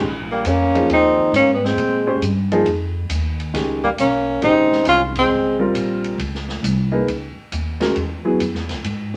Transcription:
0.00 0.44 A#1 medium
0.00 kick medium
0.00 crash medium
0.31 0.50 G3 medium
0.31 0.49 A#3 medium
0.45 0.88 F2 medium
0.45 0.90 C#4 medium
0.45 hi-hat pedal soft
0.45 ride medium
0.49 0.91 A#3 medium
0.75 1.30 F3 medium
0.75 1.31 A#3 medium
0.75 1.31 D#4 medium
0.75 1.31 G#4 medium
0.75 ride soft
0.89 1.31 D#2 medium
0.89 1.32 C4 medium
0.89 ride medium
0.94 1.33 D#4 medium
1.19 kick soft
1.32 1.75 G#2 medium
1.32 hi-hat pedal soft
1.32 ride medium
1.36 1.52 A#3 medium
1.36 1.53 C#4 medium
1.53 1.67 G3 medium
1.53 1.67 B3 medium
1.65 2.08 G#3 medium
1.65 2.08 C4 medium
1.65 snare soft
1.76 2.20 A#2 medium
1.76 ride medium
2.07 2.20 G#3 medium
2.07 2.20 C#4 medium
2.07 2.20 G4 medium
2.07 2.20 C5 medium
2.21 2.64 G2 medium
2.21 hi-hat pedal medium
2.21 ride medium
2.52 2.64 F3 medium
2.52 2.65 A#3 medium
2.52 2.65 D#4 medium
2.52 2.65 G#4 medium
2.52 ride soft
2.65 3.08 F2 medium
2.65 ride medium
3.09 3.52 D#2 medium
3.09 hi-hat pedal soft
3.09 ride medium
3.40 ride soft
3.54 3.97 C#2 medium
3.54 3.80 D#3 medium
3.54 3.81 G#3 soft
3.54 3.81 C#4 soft
3.54 3.81 G4 medium
3.54 snare soft
3.54 ride medium
3.84 3.90 G3 medium
3.84 3.90 A#3 medium
3.84 kick medium
3.98 4.41 B1 medium
3.98 4.40 A#3 medium
3.98 4.40 C#4 medium
3.98 hi-hat pedal medium
3.98 ride medium
4.42 4.85 A#1 medium
4.42 5.10 C#3 medium
4.42 5.10 D#3 medium
4.42 5.10 G#3 medium
4.42 4.84 C4 medium
4.42 4.84 D#4 medium
4.42 5.10 G4 medium
4.42 ride medium
4.72 snare soft
4.85 5.30 C2 medium
4.85 5.00 C#4 medium
4.85 5.02 F4 loud
4.85 hi-hat pedal soft
4.85 ride medium
5.15 5.59 G#3 medium
5.15 5.58 C4 medium
5.15 kick medium
5.15 ride medium
5.30 5.73 C#2 medium
5.58 6.15 G3 medium
5.58 6.15 C4 soft
5.58 6.16 F4 medium
5.58 6.16 A#4 medium
5.74 6.17 A#1 medium
5.74 hi-hat pedal soft
5.74 ride medium
6.04 ride soft
6.18 6.61 C#2 medium
6.18 ride medium
6.35 snare soft
6.49 snare soft
6.63 7.06 C2 medium
6.63 hi-hat pedal medium
6.63 ride medium
6.92 7.05 A#3 medium
6.92 7.05 D#4 medium
6.92 7.05 G#4 medium
6.92 7.06 B4 medium
7.07 7.34 C#2 medium
7.07 ride medium
7.36 muted upright bass stroke soft
7.52 7.94 D#2 medium
7.52 hi-hat pedal medium
7.52 ride medium
7.80 7.94 G#3 medium
7.80 7.94 C#4 medium
7.80 7.94 F#4 medium
7.80 7.94 A#4 medium
7.80 snare medium
7.80 ride soft
7.96 8.38 E2 medium
7.96 ride soft
8.25 8.38 F#3 medium
8.25 8.38 B3 medium
8.25 8.38 E4 medium
8.25 8.38 G#4 medium
8.39 8.54 F#2 medium
8.39 hi-hat pedal medium
8.39 ride medium
8.54 8.69 E2 medium
8.54 snare soft
8.69 8.83 C#2 medium
8.69 snare soft
8.69 ride soft
8.83 9.16 G#2 medium
8.83 ride medium

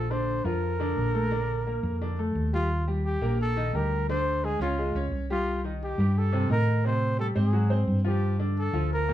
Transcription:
0.00 0.39 A#1 medium
0.00 0.13 A4 medium
0.11 0.39 D3 medium
0.11 0.39 D4 medium
0.11 0.47 C5 loud
0.45 0.93 F2 medium
0.45 0.73 F3 medium
0.45 0.74 F4 medium
0.45 2.36 A#4 medium
0.80 1.08 D3 medium
0.80 1.08 D4 medium
0.97 1.78 A#1 medium
1.14 1.29 A3 medium
1.14 1.29 A4 medium
1.31 1.60 D3 medium
1.31 1.60 D4 medium
1.67 1.95 A#3 medium
1.67 1.95 A#4 medium
1.83 2.32 F2 medium
2.01 2.16 D3 medium
2.01 2.16 D4 medium
2.19 2.47 A3 medium
2.19 2.47 A4 medium
2.35 3.16 D#2 medium
2.53 2.67 G3 medium
2.53 2.86 F4 medium
2.53 2.67 G4 medium
2.87 3.16 G3 medium
2.87 3.16 G4 medium
3.06 3.38 G4 medium
3.21 3.70 A#1 medium
3.21 3.50 A#3 medium
3.21 3.51 A#4 medium
3.41 3.76 A4 loud
3.56 3.71 D#3 medium
3.56 3.71 D#4 medium
3.73 4.55 D2 medium
3.73 4.03 G3 medium
3.73 4.03 G4 medium
3.73 4.09 A#4 loud
4.09 4.37 D3 medium
4.09 4.37 D4 medium
4.09 4.46 C5 loud
4.43 4.58 G#3 medium
4.43 4.58 G#4 medium
4.43 4.61 G#4 loud
4.60 4.92 C#2 medium
4.60 4.75 C#4 medium
4.60 5.09 F4 medium
4.60 4.75 C#5 medium
4.78 4.92 G#3 medium
4.78 4.92 G#4 medium
4.95 5.11 C#2 medium
4.95 5.24 C#4 medium
4.95 5.24 C#5 medium
5.11 5.92 C2 medium
5.30 5.58 G3 medium
5.30 5.62 F4 loud
5.30 5.58 G4 medium
5.64 5.93 D#3 medium
5.64 5.93 D#4 medium
5.83 6.19 G4 medium
5.98 6.46 G2 medium
5.98 6.27 G3 medium
5.98 6.28 G4 medium
6.18 6.51 A4 loud
6.32 6.47 C3 medium
6.32 6.47 C4 medium
6.50 7.30 A2 medium
6.50 6.78 D#3 medium
6.50 6.78 D#4 medium
6.50 6.83 A#4 loud
6.85 7.13 C3 medium
6.85 7.13 C4 medium
6.85 7.18 C5 medium
7.18 7.33 G3 medium
7.18 7.33 G4 medium
7.18 7.27 A4 medium
7.35 7.84 G#2 medium
7.35 7.50 C4 medium
7.35 7.85 G#4 medium
7.35 7.50 C5 medium
7.53 7.67 F#3 medium
7.53 7.67 F#4 medium
7.70 7.99 C4 medium
7.70 7.99 C5 medium
7.87 8.68 G2 medium
8.04 8.33 F3 medium
8.04 8.33 F4 medium
8.04 8.38 G4 medium
8.39 8.68 D3 medium
8.39 8.68 D4 medium
8.58 8.90 A4 medium
8.73 9.13 D2 medium
8.73 9.02 F3 medium
8.73 9.02 F4 medium
8.93 9.13 A#4 medium
9.09 9.13 A#2 medium
9.09 9.13 A#3 medium

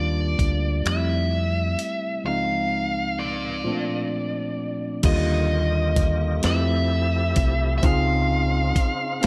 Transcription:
0.00 0.35 D#2 loud
0.00 0.65 G3 medium
0.00 0.66 A#3 medium
0.00 0.67 D4 medium
0.00 0.68 F4 medium
0.00 0.89 D5 medium
0.39 0.82 D2 medium
0.39 kick medium
0.39 closed hi-hat medium
0.85 1.74 F2 medium
0.85 2.05 G3 medium
0.85 2.06 A3 medium
0.85 2.07 C4 medium
0.85 0.93 D#4 medium
0.85 2.22 E5 medium
0.85 finger snap loud
0.85 closed hi-hat medium
0.96 2.11 E4 medium
1.79 closed hi-hat medium
2.24 3.44 C#2 medium
2.24 3.45 F3 medium
2.24 3.45 G#3 medium
2.24 3.46 C4 medium
2.24 3.46 D#4 medium
2.24 4.07 F5 medium
3.19 5.01 D5 medium
3.64 4.84 A#2 medium
3.64 4.84 F3 medium
3.64 4.85 A3 medium
3.64 4.85 C4 medium
3.64 4.86 D4 medium
5.03 6.40 D#2 loud
5.03 6.42 D3 medium
5.03 6.25 D3 medium
5.03 6.23 G3 medium
5.03 6.42 A#3 medium
5.03 6.24 A#3 medium
5.03 6.42 F4 medium
5.03 6.25 F4 medium
5.03 7.80 G4 medium
5.03 6.48 D#5 medium
5.03 kick loud
5.03 closed hi-hat medium
5.03 crash loud
5.96 kick medium
5.96 closed hi-hat medium
6.43 7.33 F2 medium
6.43 7.82 F3 medium
6.43 7.63 A3 medium
6.43 7.64 C4 medium
6.43 7.82 E4 medium
6.43 7.64 E4 medium
6.43 7.82 A4 medium
6.43 7.73 E5 medium
6.43 snare loud
6.43 closed hi-hat medium
6.47 7.65 G4 medium
7.36 7.79 C2 loud
7.36 kick medium
7.36 closed hi-hat medium
7.78 7.84 E5 medium
7.82 8.72 C#2 loud
7.82 9.21 C#3 medium
7.82 9.03 C4 medium
7.82 9.21 C4 medium
7.82 9.21 D#4 medium
7.82 9.03 D#4 medium
7.82 9.21 F4 medium
7.82 9.04 F4 medium
7.82 9.04 G#4 medium
7.82 9.27 F5 loud
7.82 kick loud
7.82 closed hi-hat medium
8.76 kick loud
8.76 closed hi-hat medium
9.21 9.27 A3 medium
9.21 9.27 A#3 medium
9.21 9.27 C4 medium
9.21 9.27 D4 medium
9.21 closed hi-hat medium

